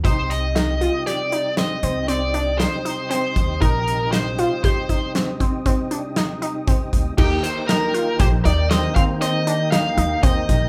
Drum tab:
CC |--------------|--------------|x-------------|
HH |xxxxxxxxxxxxxx|xxxxxxxxxxxxxx|-xxxxxxxxxxxxx|
SD |--o-o-o---o-o-|--o---o---o---|--o--oo---o--o|
BD |o------------o|o---oo-oo---oo|o---oo-o----oo|